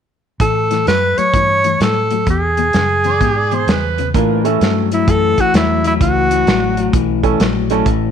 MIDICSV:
0, 0, Header, 1, 8, 480
1, 0, Start_track
1, 0, Tempo, 466563
1, 416, Time_signature, 4, 2, 24, 8
1, 8347, End_track
2, 0, Start_track
2, 0, Title_t, "Harmonica"
2, 0, Program_c, 0, 22
2, 3168, Note_on_c, 0, 74, 85
2, 3311, Note_off_c, 0, 74, 0
2, 3326, Note_on_c, 0, 67, 71
2, 3480, Note_on_c, 0, 74, 68
2, 3496, Note_off_c, 0, 67, 0
2, 3646, Note_on_c, 0, 72, 78
2, 3661, Note_off_c, 0, 74, 0
2, 3824, Note_on_c, 0, 71, 77
2, 3839, Note_off_c, 0, 72, 0
2, 4188, Note_off_c, 0, 71, 0
2, 8347, End_track
3, 0, Start_track
3, 0, Title_t, "Tenor saxophone"
3, 0, Program_c, 1, 66
3, 422, Note_on_c, 1, 69, 78
3, 867, Note_off_c, 1, 69, 0
3, 903, Note_on_c, 1, 71, 93
3, 1214, Note_on_c, 1, 73, 97
3, 1229, Note_off_c, 1, 71, 0
3, 1862, Note_off_c, 1, 73, 0
3, 1880, Note_on_c, 1, 69, 80
3, 2318, Note_off_c, 1, 69, 0
3, 2370, Note_on_c, 1, 68, 84
3, 4068, Note_off_c, 1, 68, 0
3, 5079, Note_on_c, 1, 64, 82
3, 5249, Note_on_c, 1, 69, 98
3, 5264, Note_off_c, 1, 64, 0
3, 5560, Note_on_c, 1, 66, 93
3, 5575, Note_off_c, 1, 69, 0
3, 5715, Note_off_c, 1, 66, 0
3, 5722, Note_on_c, 1, 64, 74
3, 6001, Note_off_c, 1, 64, 0
3, 6040, Note_on_c, 1, 64, 69
3, 6110, Note_off_c, 1, 64, 0
3, 6201, Note_on_c, 1, 66, 80
3, 7107, Note_off_c, 1, 66, 0
3, 8347, End_track
4, 0, Start_track
4, 0, Title_t, "Upright piano"
4, 0, Program_c, 2, 0
4, 4262, Note_on_c, 2, 58, 56
4, 4266, Note_on_c, 2, 65, 50
4, 4269, Note_on_c, 2, 62, 47
4, 4272, Note_on_c, 2, 70, 62
4, 4543, Note_off_c, 2, 58, 0
4, 4545, Note_off_c, 2, 65, 0
4, 4546, Note_off_c, 2, 62, 0
4, 4548, Note_off_c, 2, 70, 0
4, 4574, Note_on_c, 2, 57, 55
4, 4574, Note_on_c, 2, 61, 48
4, 4579, Note_on_c, 2, 64, 46
4, 4582, Note_on_c, 2, 69, 62
4, 4991, Note_off_c, 2, 57, 0
4, 4992, Note_off_c, 2, 61, 0
4, 4994, Note_off_c, 2, 64, 0
4, 4996, Note_off_c, 2, 69, 0
4, 7441, Note_on_c, 2, 57, 69
4, 7444, Note_on_c, 2, 61, 68
4, 7449, Note_on_c, 2, 69, 74
4, 7450, Note_on_c, 2, 64, 62
4, 7595, Note_off_c, 2, 57, 0
4, 7597, Note_off_c, 2, 61, 0
4, 7600, Note_off_c, 2, 64, 0
4, 7600, Note_off_c, 2, 69, 0
4, 7927, Note_on_c, 2, 57, 77
4, 7934, Note_on_c, 2, 61, 64
4, 7938, Note_on_c, 2, 64, 68
4, 7941, Note_on_c, 2, 69, 82
4, 8078, Note_off_c, 2, 57, 0
4, 8081, Note_off_c, 2, 61, 0
4, 8083, Note_off_c, 2, 64, 0
4, 8085, Note_off_c, 2, 69, 0
4, 8347, End_track
5, 0, Start_track
5, 0, Title_t, "Clean electric guitar"
5, 0, Program_c, 3, 27
5, 416, Note_on_c, 3, 45, 69
5, 420, Note_on_c, 3, 52, 74
5, 697, Note_off_c, 3, 45, 0
5, 699, Note_off_c, 3, 52, 0
5, 728, Note_on_c, 3, 45, 56
5, 735, Note_on_c, 3, 52, 62
5, 880, Note_off_c, 3, 45, 0
5, 884, Note_off_c, 3, 52, 0
5, 894, Note_on_c, 3, 45, 68
5, 900, Note_on_c, 3, 54, 82
5, 1177, Note_off_c, 3, 45, 0
5, 1180, Note_off_c, 3, 54, 0
5, 1211, Note_on_c, 3, 45, 61
5, 1213, Note_on_c, 3, 54, 67
5, 1363, Note_off_c, 3, 45, 0
5, 1364, Note_off_c, 3, 54, 0
5, 1381, Note_on_c, 3, 45, 67
5, 1387, Note_on_c, 3, 52, 82
5, 1661, Note_off_c, 3, 45, 0
5, 1664, Note_off_c, 3, 52, 0
5, 1694, Note_on_c, 3, 45, 51
5, 1695, Note_on_c, 3, 52, 66
5, 1845, Note_off_c, 3, 45, 0
5, 1845, Note_off_c, 3, 52, 0
5, 1862, Note_on_c, 3, 45, 62
5, 1864, Note_on_c, 3, 54, 72
5, 2142, Note_off_c, 3, 45, 0
5, 2143, Note_off_c, 3, 54, 0
5, 2175, Note_on_c, 3, 45, 69
5, 2184, Note_on_c, 3, 54, 69
5, 2326, Note_off_c, 3, 45, 0
5, 2331, Note_off_c, 3, 54, 0
5, 2344, Note_on_c, 3, 40, 62
5, 2349, Note_on_c, 3, 47, 77
5, 2624, Note_off_c, 3, 40, 0
5, 2626, Note_off_c, 3, 47, 0
5, 2653, Note_on_c, 3, 40, 60
5, 2662, Note_on_c, 3, 47, 68
5, 2805, Note_off_c, 3, 40, 0
5, 2810, Note_off_c, 3, 47, 0
5, 2824, Note_on_c, 3, 40, 62
5, 2829, Note_on_c, 3, 49, 90
5, 3104, Note_off_c, 3, 40, 0
5, 3107, Note_off_c, 3, 49, 0
5, 3136, Note_on_c, 3, 40, 66
5, 3141, Note_on_c, 3, 49, 61
5, 3287, Note_off_c, 3, 40, 0
5, 3290, Note_off_c, 3, 49, 0
5, 3306, Note_on_c, 3, 40, 67
5, 3310, Note_on_c, 3, 47, 84
5, 3585, Note_off_c, 3, 40, 0
5, 3587, Note_off_c, 3, 47, 0
5, 3618, Note_on_c, 3, 40, 58
5, 3625, Note_on_c, 3, 47, 67
5, 3768, Note_off_c, 3, 40, 0
5, 3772, Note_off_c, 3, 47, 0
5, 3791, Note_on_c, 3, 40, 65
5, 3797, Note_on_c, 3, 49, 64
5, 4067, Note_off_c, 3, 40, 0
5, 4071, Note_off_c, 3, 49, 0
5, 4103, Note_on_c, 3, 40, 62
5, 4106, Note_on_c, 3, 49, 72
5, 4250, Note_off_c, 3, 40, 0
5, 4252, Note_off_c, 3, 49, 0
5, 4271, Note_on_c, 3, 45, 68
5, 4276, Note_on_c, 3, 52, 82
5, 4548, Note_off_c, 3, 45, 0
5, 4550, Note_off_c, 3, 52, 0
5, 4584, Note_on_c, 3, 45, 59
5, 4590, Note_on_c, 3, 52, 76
5, 4731, Note_off_c, 3, 45, 0
5, 4734, Note_off_c, 3, 52, 0
5, 4749, Note_on_c, 3, 45, 80
5, 4755, Note_on_c, 3, 54, 74
5, 5026, Note_off_c, 3, 45, 0
5, 5029, Note_off_c, 3, 54, 0
5, 5064, Note_on_c, 3, 45, 69
5, 5068, Note_on_c, 3, 54, 78
5, 5210, Note_off_c, 3, 45, 0
5, 5213, Note_off_c, 3, 54, 0
5, 5227, Note_on_c, 3, 45, 81
5, 5229, Note_on_c, 3, 52, 84
5, 5504, Note_off_c, 3, 45, 0
5, 5506, Note_off_c, 3, 52, 0
5, 5538, Note_on_c, 3, 45, 70
5, 5544, Note_on_c, 3, 52, 80
5, 5687, Note_off_c, 3, 45, 0
5, 5690, Note_off_c, 3, 52, 0
5, 5711, Note_on_c, 3, 45, 73
5, 5714, Note_on_c, 3, 54, 75
5, 5986, Note_off_c, 3, 45, 0
5, 5988, Note_off_c, 3, 54, 0
5, 6013, Note_on_c, 3, 45, 82
5, 6019, Note_on_c, 3, 54, 80
5, 6164, Note_off_c, 3, 45, 0
5, 6167, Note_off_c, 3, 54, 0
5, 6182, Note_on_c, 3, 45, 63
5, 6188, Note_on_c, 3, 52, 80
5, 6461, Note_off_c, 3, 45, 0
5, 6464, Note_off_c, 3, 52, 0
5, 6490, Note_on_c, 3, 45, 71
5, 6496, Note_on_c, 3, 52, 78
5, 6642, Note_off_c, 3, 45, 0
5, 6645, Note_off_c, 3, 52, 0
5, 6657, Note_on_c, 3, 45, 77
5, 6662, Note_on_c, 3, 54, 83
5, 6938, Note_off_c, 3, 45, 0
5, 6940, Note_off_c, 3, 54, 0
5, 6968, Note_on_c, 3, 45, 67
5, 6970, Note_on_c, 3, 54, 68
5, 7120, Note_off_c, 3, 45, 0
5, 7121, Note_off_c, 3, 54, 0
5, 7141, Note_on_c, 3, 45, 77
5, 7144, Note_on_c, 3, 52, 97
5, 7419, Note_off_c, 3, 45, 0
5, 7420, Note_off_c, 3, 52, 0
5, 7447, Note_on_c, 3, 45, 74
5, 7452, Note_on_c, 3, 52, 73
5, 7599, Note_off_c, 3, 45, 0
5, 7601, Note_off_c, 3, 52, 0
5, 7618, Note_on_c, 3, 45, 69
5, 7623, Note_on_c, 3, 54, 81
5, 7897, Note_off_c, 3, 45, 0
5, 7899, Note_off_c, 3, 54, 0
5, 7929, Note_on_c, 3, 45, 72
5, 7935, Note_on_c, 3, 54, 88
5, 8079, Note_off_c, 3, 45, 0
5, 8082, Note_off_c, 3, 54, 0
5, 8099, Note_on_c, 3, 45, 72
5, 8104, Note_on_c, 3, 52, 77
5, 8347, Note_off_c, 3, 45, 0
5, 8347, Note_off_c, 3, 52, 0
5, 8347, End_track
6, 0, Start_track
6, 0, Title_t, "Fingered electric bass"
6, 0, Program_c, 4, 33
6, 411, Note_on_c, 4, 45, 71
6, 880, Note_off_c, 4, 45, 0
6, 894, Note_on_c, 4, 42, 66
6, 1186, Note_off_c, 4, 42, 0
6, 1372, Note_on_c, 4, 43, 72
6, 1842, Note_off_c, 4, 43, 0
6, 1854, Note_on_c, 4, 45, 69
6, 2324, Note_off_c, 4, 45, 0
6, 2332, Note_on_c, 4, 40, 73
6, 2803, Note_off_c, 4, 40, 0
6, 2821, Note_on_c, 4, 42, 84
6, 3288, Note_off_c, 4, 42, 0
6, 3298, Note_on_c, 4, 44, 75
6, 3766, Note_off_c, 4, 44, 0
6, 3777, Note_on_c, 4, 40, 77
6, 4246, Note_off_c, 4, 40, 0
6, 4260, Note_on_c, 4, 45, 76
6, 4727, Note_off_c, 4, 45, 0
6, 4742, Note_on_c, 4, 43, 72
6, 5207, Note_off_c, 4, 43, 0
6, 5224, Note_on_c, 4, 42, 74
6, 5512, Note_off_c, 4, 42, 0
6, 5696, Note_on_c, 4, 40, 81
6, 6163, Note_off_c, 4, 40, 0
6, 6180, Note_on_c, 4, 37, 72
6, 6644, Note_off_c, 4, 37, 0
6, 6657, Note_on_c, 4, 33, 84
6, 7122, Note_off_c, 4, 33, 0
6, 7133, Note_on_c, 4, 35, 79
6, 7599, Note_off_c, 4, 35, 0
6, 7611, Note_on_c, 4, 34, 82
6, 8077, Note_off_c, 4, 34, 0
6, 8085, Note_on_c, 4, 33, 86
6, 8347, Note_off_c, 4, 33, 0
6, 8347, End_track
7, 0, Start_track
7, 0, Title_t, "Muted fingered electric bass strokes"
7, 1209, Note_on_c, 9, 29, 31
7, 1312, Note_off_c, 9, 29, 0
7, 5534, Note_on_c, 9, 29, 35
7, 5636, Note_off_c, 9, 29, 0
7, 8347, End_track
8, 0, Start_track
8, 0, Title_t, "Drums"
8, 411, Note_on_c, 9, 36, 102
8, 413, Note_on_c, 9, 42, 74
8, 514, Note_off_c, 9, 36, 0
8, 516, Note_off_c, 9, 42, 0
8, 727, Note_on_c, 9, 42, 56
8, 740, Note_on_c, 9, 38, 28
8, 830, Note_off_c, 9, 42, 0
8, 842, Note_off_c, 9, 38, 0
8, 895, Note_on_c, 9, 42, 62
8, 907, Note_on_c, 9, 38, 71
8, 998, Note_off_c, 9, 42, 0
8, 1010, Note_off_c, 9, 38, 0
8, 1212, Note_on_c, 9, 42, 54
8, 1315, Note_off_c, 9, 42, 0
8, 1374, Note_on_c, 9, 36, 105
8, 1378, Note_on_c, 9, 42, 82
8, 1477, Note_off_c, 9, 36, 0
8, 1480, Note_off_c, 9, 42, 0
8, 1689, Note_on_c, 9, 42, 51
8, 1792, Note_off_c, 9, 42, 0
8, 1857, Note_on_c, 9, 42, 67
8, 1869, Note_on_c, 9, 38, 94
8, 1959, Note_off_c, 9, 42, 0
8, 1972, Note_off_c, 9, 38, 0
8, 2166, Note_on_c, 9, 42, 58
8, 2269, Note_off_c, 9, 42, 0
8, 2331, Note_on_c, 9, 42, 66
8, 2334, Note_on_c, 9, 36, 100
8, 2434, Note_off_c, 9, 42, 0
8, 2437, Note_off_c, 9, 36, 0
8, 2647, Note_on_c, 9, 42, 51
8, 2750, Note_off_c, 9, 42, 0
8, 2810, Note_on_c, 9, 42, 63
8, 2823, Note_on_c, 9, 38, 75
8, 2913, Note_off_c, 9, 42, 0
8, 2925, Note_off_c, 9, 38, 0
8, 3129, Note_on_c, 9, 42, 49
8, 3232, Note_off_c, 9, 42, 0
8, 3299, Note_on_c, 9, 36, 92
8, 3300, Note_on_c, 9, 42, 69
8, 3402, Note_off_c, 9, 36, 0
8, 3403, Note_off_c, 9, 42, 0
8, 3614, Note_on_c, 9, 42, 43
8, 3717, Note_off_c, 9, 42, 0
8, 3784, Note_on_c, 9, 42, 69
8, 3796, Note_on_c, 9, 38, 104
8, 3886, Note_off_c, 9, 42, 0
8, 3899, Note_off_c, 9, 38, 0
8, 4097, Note_on_c, 9, 42, 57
8, 4200, Note_off_c, 9, 42, 0
8, 4264, Note_on_c, 9, 36, 93
8, 4266, Note_on_c, 9, 42, 81
8, 4367, Note_off_c, 9, 36, 0
8, 4369, Note_off_c, 9, 42, 0
8, 4579, Note_on_c, 9, 42, 57
8, 4681, Note_off_c, 9, 42, 0
8, 4746, Note_on_c, 9, 42, 66
8, 4759, Note_on_c, 9, 38, 79
8, 4849, Note_off_c, 9, 42, 0
8, 4862, Note_off_c, 9, 38, 0
8, 5057, Note_on_c, 9, 42, 59
8, 5160, Note_off_c, 9, 42, 0
8, 5223, Note_on_c, 9, 36, 97
8, 5224, Note_on_c, 9, 42, 86
8, 5326, Note_off_c, 9, 36, 0
8, 5326, Note_off_c, 9, 42, 0
8, 5533, Note_on_c, 9, 42, 52
8, 5534, Note_on_c, 9, 36, 69
8, 5636, Note_off_c, 9, 42, 0
8, 5637, Note_off_c, 9, 36, 0
8, 5699, Note_on_c, 9, 42, 80
8, 5712, Note_on_c, 9, 38, 105
8, 5802, Note_off_c, 9, 42, 0
8, 5815, Note_off_c, 9, 38, 0
8, 6012, Note_on_c, 9, 42, 58
8, 6115, Note_off_c, 9, 42, 0
8, 6180, Note_on_c, 9, 36, 108
8, 6182, Note_on_c, 9, 42, 82
8, 6283, Note_off_c, 9, 36, 0
8, 6285, Note_off_c, 9, 42, 0
8, 6490, Note_on_c, 9, 42, 62
8, 6593, Note_off_c, 9, 42, 0
8, 6657, Note_on_c, 9, 42, 61
8, 6670, Note_on_c, 9, 38, 92
8, 6760, Note_off_c, 9, 42, 0
8, 6772, Note_off_c, 9, 38, 0
8, 6968, Note_on_c, 9, 42, 56
8, 7071, Note_off_c, 9, 42, 0
8, 7133, Note_on_c, 9, 36, 110
8, 7133, Note_on_c, 9, 42, 79
8, 7236, Note_off_c, 9, 36, 0
8, 7236, Note_off_c, 9, 42, 0
8, 7443, Note_on_c, 9, 36, 73
8, 7446, Note_on_c, 9, 42, 51
8, 7546, Note_off_c, 9, 36, 0
8, 7549, Note_off_c, 9, 42, 0
8, 7612, Note_on_c, 9, 42, 77
8, 7624, Note_on_c, 9, 38, 103
8, 7715, Note_off_c, 9, 42, 0
8, 7727, Note_off_c, 9, 38, 0
8, 7919, Note_on_c, 9, 42, 64
8, 8022, Note_off_c, 9, 42, 0
8, 8085, Note_on_c, 9, 42, 84
8, 8086, Note_on_c, 9, 36, 100
8, 8188, Note_off_c, 9, 42, 0
8, 8189, Note_off_c, 9, 36, 0
8, 8347, End_track
0, 0, End_of_file